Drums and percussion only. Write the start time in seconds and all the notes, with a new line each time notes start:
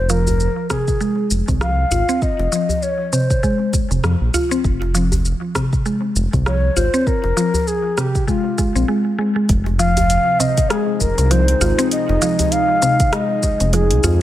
0.10 shaker
0.27 djembe bass, shaker
0.40 shaker
0.70 kick, cross-stick, shaker
0.88 kick, shaker
1.01 shaker
1.31 shaker
1.48 kick, djembe tone, shaker
1.61 cross-stick, shaker
1.91 djembe tone, djembe bass, shaker
2.09 shaker
2.22 kick, shaker
2.39 djembe slap
2.52 shaker
2.69 djembe bass, shaker
2.82 shaker
3.13 shaker
3.30 kick, shaker
3.43 kick, shaker
3.73 kick, djembe slap, djembe tone, shaker
3.91 shaker
4.04 cross-stick, shaker
4.34 djembe slap, djembe bass, shaker
4.51 shaker
4.64 kick, shaker
4.82 djembe slap
4.95 shaker
5.12 djembe bass, shaker
5.25 shaker
5.55 kick, cross-stick, shaker
5.73 kick, shaker
5.86 shaker
6.16 shaker
6.33 kick, djembe tone, shaker
6.46 cross-stick, shaker
6.76 djembe tone, djembe bass, shaker
6.94 shaker
7.07 kick, shaker
7.24 djembe slap
7.37 shaker
7.54 djembe tone, djembe bass, shaker
7.67 shaker
7.98 cross-stick, shaker
8.15 kick, shaker
8.28 kick, shaker
8.58 kick, djembe slap, djembe tone, shaker
8.76 shaker
9.49 kick, closed hi-hat, shaker
9.66 djembe slap
9.79 closed hi-hat, djembe tone, shaker
9.97 closed hi-hat, djembe bass, shaker
10.10 closed hi-hat, shaker
10.40 closed hi-hat, djembe tone, shaker
10.58 kick, closed hi-hat, shaker
10.70 cross-stick, closed hi-hat, shaker
11.01 kick, shaker
11.18 closed hi-hat, shaker
11.31 closed hi-hat, shaker
11.48 closed hi-hat
11.61 djembe bass, shaker
11.78 closed hi-hat, djembe tone, shaker
11.91 closed hi-hat, shaker
12.09 djembe slap
12.22 closed hi-hat, djembe tone, shaker
12.39 closed hi-hat, djembe bass, shaker
12.52 closed hi-hat, shaker
12.82 closed hi-hat, djembe tone, shaker
13.00 kick, closed hi-hat, shaker
13.13 cross-stick, closed hi-hat, shaker
13.43 kick, djembe slap, djembe tone, shaker
13.60 closed hi-hat, shaker
13.73 closed hi-hat, shaker
13.91 closed hi-hat
14.04 djembe slap, djembe tone, djembe bass, shaker